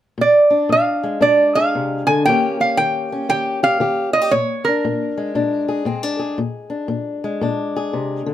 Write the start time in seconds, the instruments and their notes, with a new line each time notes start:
0.18 steel-string acoustic guitar A#2, resonator guitar played with a steel bar D5
0.50 steel-string acoustic guitar D4
0.69 steel-string acoustic guitar A#2, resonator guitar played with a steel bar F5
1.03 steel-string acoustic guitar G#3
1.21 steel-string acoustic guitar A#2 D4, resonator guitar played with a steel bar D5
1.55 steel-string acoustic guitar G#4, resonator guitar played with a steel bar F5
1.75 steel-string acoustic guitar C3
2.07 steel-string acoustic guitar D3, resonator guitar played with a steel bar G#5
2.25 steel-string acoustic guitar D#3 A#3 C#4 G4, resonator guitar played with a steel bar G5
2.60 steel-string acoustic guitar G4, resonator guitar played with a steel bar F5
2.77 steel-string acoustic guitar D#3, resonator guitar played with a steel bar G5
3.12 steel-string acoustic guitar C#4
3.29 steel-string acoustic guitar D#3 G4, resonator guitar played with a steel bar G5
3.63 steel-string acoustic guitar G4, resonator guitar played with a steel bar F5
3.80 steel-string acoustic guitar D#3 G4
4.13 steel-string acoustic guitar F4, resonator guitar played with a steel bar D#5
4.22 steel-string acoustic guitar G4
4.31 steel-string acoustic guitar A#2, resonator guitar played with a steel bar C#5
4.65 steel-string acoustic guitar D4, resonator guitar played with a steel bar A#4
4.85 steel-string acoustic guitar A#2
5.18 steel-string acoustic guitar G#3
5.35 steel-string acoustic guitar A#2 D4
5.69 steel-string acoustic guitar G#4
5.85 steel-string acoustic guitar A#2 C4
6.03 steel-string acoustic guitar D4
6.19 steel-string acoustic guitar G#4
6.38 steel-string acoustic guitar A#2
6.70 steel-string acoustic guitar D4
6.88 steel-string acoustic guitar A#2
7.24 steel-string acoustic guitar G#3
7.41 steel-string acoustic guitar A#2 D4
7.76 steel-string acoustic guitar G#4
7.93 steel-string acoustic guitar C3
8.26 steel-string acoustic guitar D3